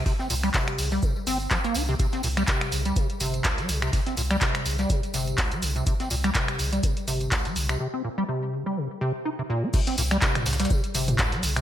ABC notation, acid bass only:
X:1
M:4/4
L:1/16
Q:"Swing 16ths" 1/4=124
K:Dblyd
V:1 name="Acid bass" clef=bass
C, C B,, G, C,2 D, G, C, z C z F, B, E C, | C, C B,, G, C,2 D, G, C, z C,2 C,, G, D, C, | C, C B,, G, C,2 D, G, C, z C,2 C,, G, D, C, | C, C B,, G, C,2 D, G, C, z C,2 C,, G, D, C, |
C, C B,, G, C,2 D, G, C, z C, z E C, B,, E | C, C B,, G, C,2 D, G, C, z C,2 C,, G, D, C, |]